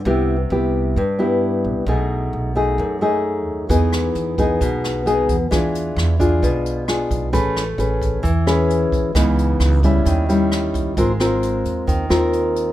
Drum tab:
HH |--------|--------|xxxxxxxx|xxxxxxxx|
SD |--------|--------|-r---r--|r-r---r-|
BD |--------|--------|o--oo--o|o--oo--o|

HH |xxxxxxxx|xxxxxxxx|xxxxxxxx|
SD |-r---r--|r-r---r-|-r---r--|
BD |o--oo--o|o--oo--o|o---o---|